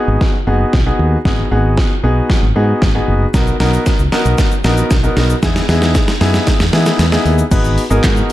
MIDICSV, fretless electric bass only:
0, 0, Header, 1, 2, 480
1, 0, Start_track
1, 0, Tempo, 521739
1, 1154, Time_signature, 4, 2, 24, 8
1, 7659, End_track
2, 0, Start_track
2, 0, Title_t, "Fretless electric bass"
2, 0, Program_c, 0, 35
2, 73, Note_on_c, 0, 32, 88
2, 149, Note_off_c, 0, 32, 0
2, 433, Note_on_c, 0, 30, 84
2, 584, Note_off_c, 0, 30, 0
2, 676, Note_on_c, 0, 35, 84
2, 826, Note_off_c, 0, 35, 0
2, 912, Note_on_c, 0, 39, 94
2, 1064, Note_off_c, 0, 39, 0
2, 1153, Note_on_c, 0, 32, 102
2, 1304, Note_off_c, 0, 32, 0
2, 1393, Note_on_c, 0, 32, 102
2, 1620, Note_off_c, 0, 32, 0
2, 1872, Note_on_c, 0, 35, 83
2, 2024, Note_off_c, 0, 35, 0
2, 2233, Note_on_c, 0, 32, 92
2, 2309, Note_off_c, 0, 32, 0
2, 2353, Note_on_c, 0, 44, 95
2, 2504, Note_off_c, 0, 44, 0
2, 2596, Note_on_c, 0, 32, 88
2, 2746, Note_off_c, 0, 32, 0
2, 2834, Note_on_c, 0, 30, 85
2, 2985, Note_off_c, 0, 30, 0
2, 3073, Note_on_c, 0, 35, 104
2, 3225, Note_off_c, 0, 35, 0
2, 3314, Note_on_c, 0, 35, 98
2, 3465, Note_off_c, 0, 35, 0
2, 3674, Note_on_c, 0, 37, 82
2, 3749, Note_off_c, 0, 37, 0
2, 3914, Note_on_c, 0, 35, 84
2, 3989, Note_off_c, 0, 35, 0
2, 4274, Note_on_c, 0, 34, 86
2, 4425, Note_off_c, 0, 34, 0
2, 4516, Note_on_c, 0, 35, 90
2, 4667, Note_off_c, 0, 35, 0
2, 4753, Note_on_c, 0, 35, 93
2, 4904, Note_off_c, 0, 35, 0
2, 4993, Note_on_c, 0, 40, 103
2, 5144, Note_off_c, 0, 40, 0
2, 5233, Note_on_c, 0, 40, 97
2, 5460, Note_off_c, 0, 40, 0
2, 5713, Note_on_c, 0, 42, 99
2, 5865, Note_off_c, 0, 42, 0
2, 6073, Note_on_c, 0, 40, 90
2, 6149, Note_off_c, 0, 40, 0
2, 6193, Note_on_c, 0, 52, 96
2, 6344, Note_off_c, 0, 52, 0
2, 6432, Note_on_c, 0, 40, 106
2, 6584, Note_off_c, 0, 40, 0
2, 6673, Note_on_c, 0, 39, 90
2, 6824, Note_off_c, 0, 39, 0
2, 6913, Note_on_c, 0, 32, 114
2, 7140, Note_off_c, 0, 32, 0
2, 7274, Note_on_c, 0, 32, 91
2, 7350, Note_off_c, 0, 32, 0
2, 7396, Note_on_c, 0, 44, 108
2, 7547, Note_off_c, 0, 44, 0
2, 7659, End_track
0, 0, End_of_file